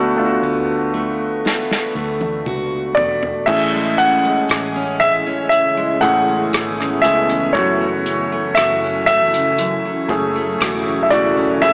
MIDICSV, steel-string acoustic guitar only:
0, 0, Header, 1, 2, 480
1, 0, Start_track
1, 0, Key_signature, 3, "minor"
1, 0, Tempo, 1016949
1, 1645, Time_signature, 4, 2, 24, 8
1, 5537, End_track
2, 0, Start_track
2, 0, Title_t, "Steel-string acoustic guitar"
2, 0, Program_c, 0, 25
2, 0, Note_on_c, 0, 57, 51
2, 0, Note_on_c, 0, 59, 54
2, 0, Note_on_c, 0, 66, 58
2, 199, Note_off_c, 0, 59, 0
2, 204, Note_on_c, 0, 59, 48
2, 441, Note_off_c, 0, 57, 0
2, 442, Note_on_c, 0, 57, 55
2, 678, Note_off_c, 0, 59, 0
2, 684, Note_on_c, 0, 59, 53
2, 921, Note_off_c, 0, 57, 0
2, 923, Note_on_c, 0, 57, 44
2, 1160, Note_off_c, 0, 66, 0
2, 1165, Note_on_c, 0, 66, 54
2, 1400, Note_off_c, 0, 57, 0
2, 1402, Note_on_c, 0, 57, 47
2, 1644, Note_on_c, 0, 45, 63
2, 1692, Note_off_c, 0, 59, 0
2, 1693, Note_off_c, 0, 66, 0
2, 1764, Note_off_c, 0, 57, 0
2, 1766, Note_on_c, 0, 56, 48
2, 1885, Note_on_c, 0, 61, 51
2, 1998, Note_off_c, 0, 56, 0
2, 2003, Note_on_c, 0, 56, 52
2, 2123, Note_on_c, 0, 68, 51
2, 2244, Note_off_c, 0, 61, 0
2, 2246, Note_on_c, 0, 61, 51
2, 2356, Note_off_c, 0, 56, 0
2, 2361, Note_on_c, 0, 56, 54
2, 2484, Note_off_c, 0, 61, 0
2, 2486, Note_on_c, 0, 61, 52
2, 2605, Note_off_c, 0, 45, 0
2, 2719, Note_off_c, 0, 56, 0
2, 2724, Note_on_c, 0, 56, 55
2, 2843, Note_off_c, 0, 61, 0
2, 2845, Note_on_c, 0, 61, 46
2, 2959, Note_off_c, 0, 56, 0
2, 2965, Note_on_c, 0, 56, 49
2, 3077, Note_off_c, 0, 68, 0
2, 3082, Note_on_c, 0, 68, 56
2, 3206, Note_off_c, 0, 61, 0
2, 3208, Note_on_c, 0, 61, 47
2, 3320, Note_off_c, 0, 56, 0
2, 3325, Note_on_c, 0, 56, 55
2, 3442, Note_off_c, 0, 61, 0
2, 3444, Note_on_c, 0, 61, 47
2, 3569, Note_on_c, 0, 42, 74
2, 3612, Note_off_c, 0, 68, 0
2, 3613, Note_off_c, 0, 56, 0
2, 3687, Note_on_c, 0, 57, 52
2, 3805, Note_off_c, 0, 61, 0
2, 3807, Note_on_c, 0, 61, 51
2, 3926, Note_off_c, 0, 57, 0
2, 3928, Note_on_c, 0, 57, 59
2, 4048, Note_on_c, 0, 66, 57
2, 4167, Note_off_c, 0, 61, 0
2, 4169, Note_on_c, 0, 61, 49
2, 4287, Note_off_c, 0, 57, 0
2, 4289, Note_on_c, 0, 57, 56
2, 4405, Note_off_c, 0, 61, 0
2, 4407, Note_on_c, 0, 61, 53
2, 4520, Note_off_c, 0, 42, 0
2, 4526, Note_on_c, 0, 42, 72
2, 4648, Note_off_c, 0, 57, 0
2, 4650, Note_on_c, 0, 57, 51
2, 4767, Note_off_c, 0, 61, 0
2, 4769, Note_on_c, 0, 61, 45
2, 4886, Note_off_c, 0, 57, 0
2, 4888, Note_on_c, 0, 57, 56
2, 5004, Note_off_c, 0, 66, 0
2, 5009, Note_on_c, 0, 66, 59
2, 5126, Note_off_c, 0, 61, 0
2, 5128, Note_on_c, 0, 61, 52
2, 5244, Note_off_c, 0, 57, 0
2, 5246, Note_on_c, 0, 57, 52
2, 5364, Note_off_c, 0, 61, 0
2, 5366, Note_on_c, 0, 61, 52
2, 5486, Note_off_c, 0, 42, 0
2, 5488, Note_on_c, 0, 45, 74
2, 5535, Note_off_c, 0, 66, 0
2, 5537, Note_off_c, 0, 45, 0
2, 5537, Note_off_c, 0, 57, 0
2, 5537, Note_off_c, 0, 61, 0
2, 5537, End_track
0, 0, End_of_file